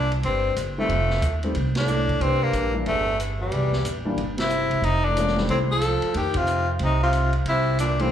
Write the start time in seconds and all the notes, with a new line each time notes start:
Already playing: C2 A#2 D4
0.12 ride
0.23 G1 G2 C4, ride
0.56 F#1, hi-hat pedal, ride
0.78 F2 D#3 G3 A3 C4
0.89 F1, ride
1.10 snare
1.22 D#2, hi-hat pedal, ride
1.43 D#3 G3 A3 C4, ride
1.55 C2, ride
1.75 A2 D4, snare, ride
1.87 hi-hat pedal
2.09 kick, ride
2.20 C2 G2 C4, ride
2.42 G2 A#3
2.53 A#1, hi-hat pedal, ride
2.74 E3 G3 A#3 D4
2.86 G1 E2 A3, ride
3.20 hi-hat pedal, ride
3.38 E2 G3
3.51 C2, ride
3.73 snare
3.84 A#1, hi-hat pedal, ride
4.05 E3 G3 A#3 D4
4.17 G1, ride
4.38 C3 E4, snare, ride
4.50 hi-hat pedal
4.70 E1, ride
4.82 F1 C3 D#4, ride
5.05 A2 D4
5.17 E3 G#3 A#3 C#4, hi-hat pedal, ride
5.27 snare
5.36 D#3 G3 A3 C4, snare
5.48 C2 A2 C4, ride
5.70 F3 A4
5.81 hi-hat pedal, ride
6.02 muted upright bass stroke, ride
6.14 F2 D#3 G4, ride
6.34 C3 F4, kick, ride
6.47 hi-hat pedal
6.79 C2 C3, ride
6.84 D#4
7.03 C3 F4
7.13 hi-hat pedal, ride
7.33 ride
7.45 C2 C3 E4, ride
7.79 A#2 D4, hi-hat pedal, ride
7.99 A2 E3 G3 A#3 C4 D4, ride